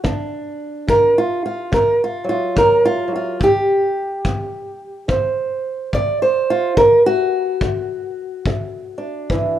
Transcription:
0, 0, Header, 1, 3, 480
1, 0, Start_track
1, 0, Tempo, 841515
1, 21, Time_signature, 4, 2, 24, 8
1, 5471, End_track
2, 0, Start_track
2, 0, Title_t, "Steel-string acoustic guitar"
2, 0, Program_c, 0, 25
2, 21, Note_on_c, 0, 50, 78
2, 23, Note_on_c, 0, 62, 46
2, 463, Note_off_c, 0, 50, 0
2, 499, Note_on_c, 0, 50, 57
2, 510, Note_on_c, 0, 70, 94
2, 661, Note_off_c, 0, 62, 0
2, 665, Note_off_c, 0, 70, 0
2, 673, Note_on_c, 0, 65, 82
2, 824, Note_off_c, 0, 65, 0
2, 830, Note_on_c, 0, 65, 79
2, 942, Note_off_c, 0, 50, 0
2, 980, Note_on_c, 0, 50, 77
2, 986, Note_off_c, 0, 65, 0
2, 991, Note_on_c, 0, 70, 80
2, 1146, Note_off_c, 0, 70, 0
2, 1163, Note_on_c, 0, 65, 71
2, 1280, Note_on_c, 0, 54, 43
2, 1300, Note_off_c, 0, 65, 0
2, 1307, Note_on_c, 0, 65, 82
2, 1423, Note_off_c, 0, 50, 0
2, 1459, Note_on_c, 0, 50, 70
2, 1464, Note_off_c, 0, 65, 0
2, 1471, Note_on_c, 0, 70, 85
2, 1626, Note_off_c, 0, 70, 0
2, 1628, Note_on_c, 0, 65, 91
2, 1749, Note_off_c, 0, 54, 0
2, 1756, Note_on_c, 0, 54, 36
2, 1784, Note_off_c, 0, 65, 0
2, 1800, Note_on_c, 0, 65, 74
2, 1902, Note_off_c, 0, 50, 0
2, 1920, Note_off_c, 0, 54, 0
2, 1937, Note_on_c, 0, 43, 69
2, 1950, Note_off_c, 0, 65, 0
2, 1960, Note_on_c, 0, 67, 92
2, 2381, Note_off_c, 0, 43, 0
2, 2424, Note_on_c, 0, 43, 61
2, 2864, Note_off_c, 0, 43, 0
2, 2898, Note_on_c, 0, 48, 84
2, 2900, Note_off_c, 0, 67, 0
2, 2902, Note_on_c, 0, 72, 52
2, 3342, Note_off_c, 0, 48, 0
2, 3382, Note_off_c, 0, 72, 0
2, 3382, Note_on_c, 0, 48, 66
2, 3391, Note_on_c, 0, 74, 86
2, 3546, Note_off_c, 0, 74, 0
2, 3548, Note_on_c, 0, 72, 85
2, 3709, Note_on_c, 0, 65, 90
2, 3824, Note_off_c, 0, 48, 0
2, 3861, Note_off_c, 0, 65, 0
2, 3862, Note_on_c, 0, 50, 77
2, 3863, Note_on_c, 0, 70, 89
2, 3865, Note_off_c, 0, 72, 0
2, 4022, Note_off_c, 0, 70, 0
2, 4029, Note_on_c, 0, 66, 108
2, 4304, Note_off_c, 0, 50, 0
2, 4346, Note_on_c, 0, 50, 63
2, 4786, Note_off_c, 0, 50, 0
2, 4830, Note_on_c, 0, 50, 78
2, 5121, Note_on_c, 0, 62, 44
2, 5268, Note_off_c, 0, 50, 0
2, 5306, Note_on_c, 0, 52, 61
2, 5471, Note_off_c, 0, 52, 0
2, 5471, Note_off_c, 0, 62, 0
2, 5471, Note_off_c, 0, 66, 0
2, 5471, End_track
3, 0, Start_track
3, 0, Title_t, "Drums"
3, 26, Note_on_c, 9, 36, 59
3, 83, Note_off_c, 9, 36, 0
3, 505, Note_on_c, 9, 36, 67
3, 562, Note_off_c, 9, 36, 0
3, 985, Note_on_c, 9, 36, 61
3, 1042, Note_off_c, 9, 36, 0
3, 1464, Note_on_c, 9, 36, 67
3, 1521, Note_off_c, 9, 36, 0
3, 1944, Note_on_c, 9, 36, 63
3, 2001, Note_off_c, 9, 36, 0
3, 2423, Note_on_c, 9, 36, 68
3, 2480, Note_off_c, 9, 36, 0
3, 2903, Note_on_c, 9, 36, 59
3, 2960, Note_off_c, 9, 36, 0
3, 3383, Note_on_c, 9, 36, 59
3, 3440, Note_off_c, 9, 36, 0
3, 3862, Note_on_c, 9, 36, 65
3, 3919, Note_off_c, 9, 36, 0
3, 4341, Note_on_c, 9, 36, 61
3, 4398, Note_off_c, 9, 36, 0
3, 4823, Note_on_c, 9, 36, 67
3, 4880, Note_off_c, 9, 36, 0
3, 5304, Note_on_c, 9, 36, 65
3, 5361, Note_off_c, 9, 36, 0
3, 5471, End_track
0, 0, End_of_file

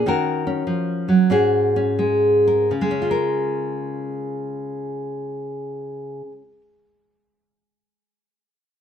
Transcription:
0, 0, Header, 1, 2, 480
1, 0, Start_track
1, 0, Key_signature, -5, "major"
1, 0, Tempo, 625000
1, 37, Time_signature, 4, 2, 24, 8
1, 999, Tempo, 684151
1, 1479, Tempo, 736196
1, 1959, Tempo, 766284
1, 5772, End_track
2, 0, Start_track
2, 0, Title_t, "Nylon-string guitar"
2, 0, Program_c, 0, 24
2, 47, Note_on_c, 0, 51, 64
2, 51, Note_on_c, 0, 61, 54
2, 58, Note_on_c, 0, 66, 52
2, 64, Note_on_c, 0, 70, 63
2, 350, Note_off_c, 0, 61, 0
2, 360, Note_on_c, 0, 61, 52
2, 510, Note_off_c, 0, 51, 0
2, 513, Note_on_c, 0, 53, 55
2, 833, Note_on_c, 0, 54, 51
2, 836, Note_off_c, 0, 53, 0
2, 984, Note_off_c, 0, 61, 0
2, 990, Note_off_c, 0, 66, 0
2, 991, Note_off_c, 0, 70, 0
2, 997, Note_on_c, 0, 44, 63
2, 999, Note_off_c, 0, 54, 0
2, 1002, Note_on_c, 0, 61, 53
2, 1007, Note_on_c, 0, 66, 53
2, 1010, Note_on_c, 0, 68, 59
2, 1314, Note_off_c, 0, 61, 0
2, 1323, Note_on_c, 0, 61, 58
2, 1480, Note_on_c, 0, 56, 51
2, 1796, Note_off_c, 0, 68, 0
2, 1799, Note_on_c, 0, 70, 45
2, 1940, Note_off_c, 0, 56, 0
2, 1940, Note_off_c, 0, 70, 0
2, 1942, Note_off_c, 0, 61, 0
2, 1943, Note_off_c, 0, 66, 0
2, 1951, Note_on_c, 0, 49, 56
2, 1958, Note_off_c, 0, 44, 0
2, 2017, Note_on_c, 0, 56, 55
2, 2077, Note_on_c, 0, 61, 53
2, 2144, Note_on_c, 0, 65, 49
2, 2202, Note_on_c, 0, 70, 52
2, 4144, Note_off_c, 0, 49, 0
2, 4209, Note_off_c, 0, 56, 0
2, 4269, Note_off_c, 0, 61, 0
2, 4337, Note_off_c, 0, 65, 0
2, 4394, Note_off_c, 0, 70, 0
2, 5772, End_track
0, 0, End_of_file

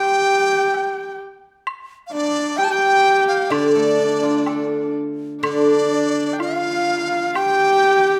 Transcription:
0, 0, Header, 1, 6, 480
1, 0, Start_track
1, 0, Tempo, 928793
1, 861, Time_signature, 2, 2, 24, 8
1, 1816, Tempo, 955414
1, 4169, End_track
2, 0, Start_track
2, 0, Title_t, "Erhu"
2, 0, Program_c, 0, 110
2, 0, Note_on_c, 0, 79, 81
2, 619, Note_off_c, 0, 79, 0
2, 1100, Note_on_c, 0, 74, 80
2, 1321, Note_off_c, 0, 74, 0
2, 1336, Note_on_c, 0, 79, 87
2, 1399, Note_off_c, 0, 79, 0
2, 1402, Note_on_c, 0, 79, 89
2, 1808, Note_on_c, 0, 74, 72
2, 1816, Note_off_c, 0, 79, 0
2, 2534, Note_off_c, 0, 74, 0
2, 2783, Note_on_c, 0, 74, 64
2, 3231, Note_on_c, 0, 79, 52
2, 3239, Note_off_c, 0, 74, 0
2, 3263, Note_on_c, 0, 77, 78
2, 3270, Note_off_c, 0, 79, 0
2, 3749, Note_on_c, 0, 79, 92
2, 3757, Note_off_c, 0, 77, 0
2, 4169, Note_off_c, 0, 79, 0
2, 4169, End_track
3, 0, Start_track
3, 0, Title_t, "Dizi"
3, 0, Program_c, 1, 73
3, 0, Note_on_c, 1, 79, 105
3, 598, Note_off_c, 1, 79, 0
3, 1069, Note_on_c, 1, 77, 69
3, 1097, Note_on_c, 1, 74, 97
3, 1105, Note_off_c, 1, 77, 0
3, 1332, Note_on_c, 1, 79, 96
3, 1340, Note_off_c, 1, 74, 0
3, 1365, Note_on_c, 1, 81, 82
3, 1373, Note_off_c, 1, 79, 0
3, 1405, Note_on_c, 1, 79, 100
3, 1412, Note_off_c, 1, 81, 0
3, 1690, Note_off_c, 1, 79, 0
3, 1693, Note_on_c, 1, 77, 82
3, 1814, Note_on_c, 1, 74, 92
3, 1822, Note_off_c, 1, 77, 0
3, 2537, Note_off_c, 1, 74, 0
3, 2789, Note_on_c, 1, 74, 85
3, 3248, Note_off_c, 1, 74, 0
3, 3273, Note_on_c, 1, 77, 90
3, 3725, Note_off_c, 1, 77, 0
3, 3741, Note_on_c, 1, 79, 98
3, 4169, Note_off_c, 1, 79, 0
3, 4169, End_track
4, 0, Start_track
4, 0, Title_t, "Horsehead fiddle"
4, 0, Program_c, 2, 110
4, 0, Note_on_c, 2, 67, 78
4, 603, Note_off_c, 2, 67, 0
4, 1103, Note_on_c, 2, 62, 78
4, 1337, Note_on_c, 2, 67, 85
4, 1344, Note_off_c, 2, 62, 0
4, 1399, Note_off_c, 2, 67, 0
4, 1402, Note_on_c, 2, 67, 84
4, 1817, Note_on_c, 2, 62, 73
4, 1824, Note_off_c, 2, 67, 0
4, 2538, Note_off_c, 2, 62, 0
4, 2786, Note_on_c, 2, 62, 73
4, 3270, Note_on_c, 2, 65, 79
4, 3277, Note_off_c, 2, 62, 0
4, 3740, Note_on_c, 2, 67, 96
4, 3747, Note_off_c, 2, 65, 0
4, 4169, Note_off_c, 2, 67, 0
4, 4169, End_track
5, 0, Start_track
5, 0, Title_t, "Guzheng"
5, 0, Program_c, 3, 107
5, 1810, Note_on_c, 3, 50, 63
5, 1936, Note_on_c, 3, 57, 47
5, 2054, Note_on_c, 3, 62, 42
5, 2174, Note_on_c, 3, 65, 42
5, 2298, Note_on_c, 3, 69, 41
5, 2772, Note_off_c, 3, 50, 0
5, 2778, Note_on_c, 3, 50, 63
5, 2906, Note_off_c, 3, 57, 0
5, 3027, Note_off_c, 3, 62, 0
5, 3148, Note_off_c, 3, 65, 0
5, 3268, Note_off_c, 3, 69, 0
5, 4169, Note_off_c, 3, 50, 0
5, 4169, End_track
6, 0, Start_track
6, 0, Title_t, "Drums"
6, 383, Note_on_c, 9, 77, 47
6, 435, Note_off_c, 9, 77, 0
6, 863, Note_on_c, 9, 76, 59
6, 914, Note_off_c, 9, 76, 0
6, 1339, Note_on_c, 9, 77, 43
6, 1391, Note_off_c, 9, 77, 0
6, 1817, Note_on_c, 9, 76, 58
6, 1868, Note_off_c, 9, 76, 0
6, 2293, Note_on_c, 9, 76, 43
6, 2293, Note_on_c, 9, 77, 43
6, 2344, Note_off_c, 9, 76, 0
6, 2344, Note_off_c, 9, 77, 0
6, 2781, Note_on_c, 9, 76, 68
6, 2832, Note_off_c, 9, 76, 0
6, 3266, Note_on_c, 9, 76, 45
6, 3316, Note_off_c, 9, 76, 0
6, 3746, Note_on_c, 9, 76, 57
6, 3796, Note_off_c, 9, 76, 0
6, 4169, End_track
0, 0, End_of_file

